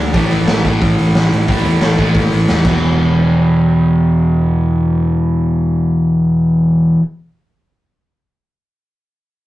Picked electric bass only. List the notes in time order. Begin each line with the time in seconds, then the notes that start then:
Already playing: D2
0.14 A1
0.32 A1
0.48 A1
0.65 A1
0.82 A1
1.00 A1
1.16 A1
1.32 A2
1.49 A1
1.65 E2
1.82 A1
1.99 A1
2.15 A1
2.32 A1
2.50 E2
2.64 E1